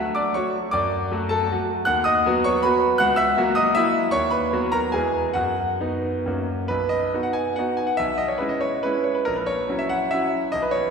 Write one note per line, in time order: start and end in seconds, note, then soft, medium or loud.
0.00 0.37 D2 medium
0.00 0.32 F#3 medium
0.00 0.32 A3 medium
0.00 0.32 F#4 medium
0.00 0.13 E5 medium
0.00 0.15 E6 loud
0.15 0.34 D5 medium
0.15 0.34 D6 medium
0.34 0.70 F#3 soft
0.34 0.70 A3 soft
0.34 0.70 F#4 soft
0.34 0.70 C#5 medium
0.34 0.72 C#6 medium
0.71 1.11 F#2 medium
0.71 1.28 D5 medium
0.71 1.31 D6 loud
1.11 1.47 F#3 medium
1.11 1.47 A3 medium
1.11 1.48 F#4 medium
1.29 1.49 A4 medium
1.29 1.50 A5 medium
1.51 1.84 F#3 soft
1.51 1.84 A3 soft
1.51 1.84 F#4 medium
1.85 2.24 D#2 medium
1.85 2.04 F#5 medium
1.85 2.05 F#6 loud
2.04 2.42 D#5 medium
2.04 2.44 D#6 loud
2.26 2.61 F#3 medium
2.26 2.61 B3 medium
2.26 2.61 F#4 medium
2.44 2.63 C#5 medium
2.44 2.64 C#6 loud
2.63 2.97 F#3 soft
2.63 2.97 B3 medium
2.63 2.97 F#4 medium
2.63 2.97 B4 medium
2.63 2.99 B5 loud
2.98 3.37 C#2 medium
2.98 3.17 F#5 loud
2.98 3.17 F#6 loud
3.16 3.54 E5 loud
3.16 3.56 E6 loud
3.37 3.72 F#3 medium
3.37 3.72 A#3 medium
3.37 3.72 F#4 medium
3.55 3.74 D#5 medium
3.55 3.75 D#6 loud
3.75 4.09 F#3 soft
3.75 4.10 A#3 soft
3.75 4.10 E4 medium
3.75 4.10 F#4 medium
3.75 4.12 E5 loud
4.11 4.51 D#2 medium
4.11 4.30 C#5 loud
4.11 4.31 C#6 loud
4.30 4.69 B4 medium
4.30 4.72 B5 medium
4.53 4.89 F#3 medium
4.53 4.90 B3 medium
4.53 4.90 F#4 medium
4.72 4.92 A#4 medium
4.72 4.93 A#5 loud
4.92 5.34 E2 medium
4.92 5.31 G#3 soft
4.92 5.32 B3 soft
4.92 5.32 E4 soft
4.92 5.32 G#4 medium
4.92 5.34 G#5 medium
5.33 5.79 F#2 medium
5.33 6.22 F#4 medium
5.33 6.25 F#5 medium
5.81 6.22 B3 soft
5.81 6.22 D#4 medium
6.26 6.68 F#2 medium
6.26 6.65 A#3 soft
6.26 6.65 C#4 soft
6.26 6.66 F#4 soft
6.68 7.12 B1 medium
6.68 6.90 B4 medium
6.89 7.23 D#5 medium
7.14 7.53 B3 soft
7.14 7.53 D#4 soft
7.14 7.54 F#4 soft
7.23 7.34 F#5 medium
7.33 7.56 G#5 medium
7.56 7.95 B3 soft
7.56 7.95 D#4 soft
7.56 7.95 F#4 medium
7.56 7.77 F#5 medium
7.77 7.87 G#5 medium
7.87 7.97 F#5 medium
7.97 8.40 B1 medium
7.97 8.18 E5 medium
8.18 8.29 D#5 medium
8.28 8.40 C#5 medium
8.38 8.80 G#3 soft
8.38 8.80 C#4 soft
8.38 8.81 E4 soft
8.38 8.50 B4 medium
8.49 8.61 D#5 medium
8.61 8.83 C#5 medium
8.83 9.23 G#3 soft
8.83 9.23 C#4 soft
8.83 9.23 E4 medium
8.83 9.05 B4 medium
9.04 9.15 C#5 medium
9.15 9.26 B4 medium
9.25 9.68 A#1 medium
9.25 9.36 A#4 medium
9.36 9.47 B4 medium
9.46 9.79 C#5 medium
9.69 10.07 F#3 soft
9.69 10.08 C#4 soft
9.69 10.08 E4 soft
9.79 9.90 E5 medium
9.89 10.11 F#5 medium
10.11 10.49 F#3 soft
10.11 10.49 C#4 soft
10.11 10.49 E4 medium
10.11 10.52 E5 medium
10.52 10.90 B1 medium
10.52 10.62 D#5 loud
10.62 10.73 B4 medium
10.71 10.90 C#5 medium